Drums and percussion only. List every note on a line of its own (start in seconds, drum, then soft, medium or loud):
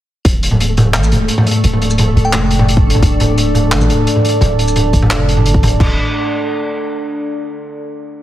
0.25 kick loud
0.25 closed hi-hat medium
0.43 closed hi-hat medium
0.51 mid tom medium
0.60 closed hi-hat medium
0.77 closed hi-hat medium
0.77 mid tom medium
0.94 clap loud
0.94 closed hi-hat medium
0.94 shaker medium
1.03 shaker medium
1.12 closed hi-hat medium
1.12 mid tom medium
1.28 closed hi-hat medium
1.38 mid tom medium
1.47 closed hi-hat medium
1.51 closed hi-hat medium
1.64 closed hi-hat medium
1.73 mid tom medium
1.82 closed hi-hat medium
1.90 shaker soft
1.98 closed hi-hat medium
1.98 mid tom medium
2.17 closed hi-hat soft
2.33 clap loud
2.33 closed hi-hat medium
2.33 mid tom medium
2.51 closed hi-hat medium
2.59 mid tom medium
2.68 closed hi-hat medium
2.77 kick loud
2.90 closed hi-hat medium
2.95 mid tom medium
3.02 kick loud
3.02 closed hi-hat medium
3.20 closed hi-hat medium
3.20 mid tom medium
3.38 closed hi-hat medium
3.55 closed hi-hat medium
3.55 mid tom medium
3.72 clap loud
3.72 closed hi-hat medium
3.72 shaker medium
3.81 mid tom medium
3.81 shaker medium
3.90 closed hi-hat medium
4.07 closed hi-hat medium
4.16 mid tom soft
4.25 closed hi-hat medium
4.29 closed hi-hat medium
4.41 closed hi-hat medium
4.41 mid tom medium
4.59 closed hi-hat medium
4.68 shaker soft
4.76 closed hi-hat medium
4.76 mid tom medium
4.93 kick medium
4.93 closed hi-hat medium
5.02 mid tom medium
5.11 clap loud
5.11 closed hi-hat medium
5.29 closed hi-hat medium
5.37 mid tom soft
5.46 closed hi-hat medium
5.54 kick loud
5.63 closed hi-hat medium
5.63 mid tom medium
5.67 closed hi-hat medium
5.80 kick loud
5.80 crash medium